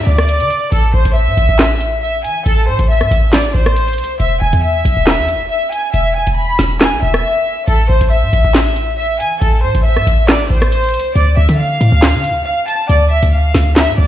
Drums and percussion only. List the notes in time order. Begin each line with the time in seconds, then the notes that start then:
0.18 cross-stick
0.29 closed hi-hat
0.40 closed hi-hat
0.50 closed hi-hat
0.72 closed hi-hat
1.05 closed hi-hat
1.38 closed hi-hat
1.59 snare, clap, closed hi-hat
1.80 closed hi-hat
2.24 closed hi-hat
2.46 closed hi-hat
2.79 closed hi-hat
3.01 cross-stick
3.11 closed hi-hat
3.33 snare, clap, closed hi-hat
3.66 cross-stick
3.76 closed hi-hat
3.88 closed hi-hat
3.93 closed hi-hat
3.98 closed hi-hat
4.04 closed hi-hat
4.20 closed hi-hat
4.53 closed hi-hat
4.85 closed hi-hat
5.07 snare, clap, closed hi-hat
5.28 closed hi-hat
5.72 closed hi-hat
5.94 closed hi-hat
6.27 closed hi-hat
6.59 snare, closed hi-hat
6.81 snare, clap, closed hi-hat
7.14 cross-stick
7.68 closed hi-hat
8.01 closed hi-hat
8.33 closed hi-hat
8.55 snare, clap, closed hi-hat
8.76 closed hi-hat
9.20 closed hi-hat
9.41 closed hi-hat
9.75 closed hi-hat
9.97 cross-stick
10.07 closed hi-hat
10.29 snare, clap, closed hi-hat
10.62 cross-stick
10.72 closed hi-hat
10.83 closed hi-hat
10.89 closed hi-hat
10.94 closed hi-hat
10.99 closed hi-hat
11.15 closed hi-hat
11.49 closed hi-hat
11.81 closed hi-hat
12.02 snare, clap, closed hi-hat
12.24 closed hi-hat
12.68 closed hi-hat
12.89 closed hi-hat
13.23 closed hi-hat
13.55 snare, closed hi-hat
13.76 snare, clap, closed hi-hat